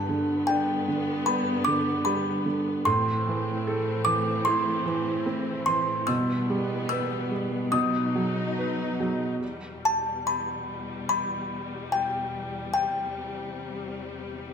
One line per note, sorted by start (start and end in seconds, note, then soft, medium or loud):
0.00 2.83 G2 medium
0.00 2.84 G2 medium
0.00 2.84 D3 medium
0.00 2.84 B3 medium
0.00 0.44 A5 medium
0.09 0.87 D3 medium
0.47 2.04 D4 medium
0.47 1.30 G5 medium
0.88 1.66 D3 soft
1.26 2.82 B3 medium
1.26 1.68 B5 medium
1.65 2.44 D3 medium
1.65 2.07 D6 medium
2.05 2.84 G3 medium
2.05 2.82 B5 medium
2.46 2.85 D3 soft
2.85 6.05 A2 medium
2.85 6.06 A2 medium
2.85 7.70 E3 medium
2.85 6.06 C4 medium
2.85 4.10 C6 loud
3.27 4.05 E3 medium
3.67 5.24 A4 medium
4.05 4.84 E3 medium
4.05 4.47 D6 loud
4.45 6.05 E4 medium
4.45 5.63 C6 medium
4.86 5.66 E3 medium
5.26 6.06 C4 medium
5.66 6.07 E3 soft
5.66 6.09 C6 medium
6.07 7.69 B2 medium
6.07 9.39 B2 medium
6.07 7.72 G3 medium
6.07 7.72 B3 medium
6.07 6.88 E6 loud
6.50 7.30 G3 medium
6.89 7.71 B4 medium
6.89 7.75 E6 medium
7.31 7.72 G3 soft
7.72 9.38 B2 medium
7.72 9.40 F#3 medium
7.72 9.41 D#4 medium
7.72 8.96 D#6 medium
8.15 8.99 F#3 soft
8.58 9.40 B4 medium
9.00 9.41 F#3 soft
9.41 14.54 E2 medium
9.41 12.69 B2 medium
9.41 14.54 G3 medium
9.85 10.27 A5 medium
10.27 11.08 B5 medium
11.09 11.94 B5 loud
11.92 12.72 G5 medium
12.74 14.54 C3 medium
12.74 13.90 G5 medium